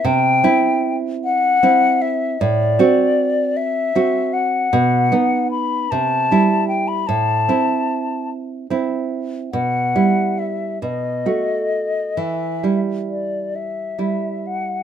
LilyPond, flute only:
\new Staff \with { instrumentName = "Flute" } { \time 6/8 \key e \minor \tempo 4. = 50 g''4~ g''16 r16 fis''4 e''8 | d''4. e''4 fis''8~ | fis''4 b''8 a''4 g''16 b''16 | a''4. r4. |
fis''4 e''8 dis''4. | e''4 d''8 e''4 fis''8 | }